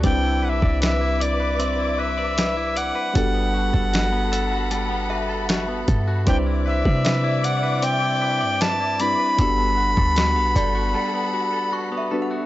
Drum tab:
HH |x---x-x-x---x-x-|x---x-x-x---x-x-|x---x-x-x---x-x-|x---x-x---------|
SD |----o-------o---|----o-------o---|----o-------o---|----o-----------|
BD |o--o------------|o--o----------o-|o--o------------|o--o--o---------|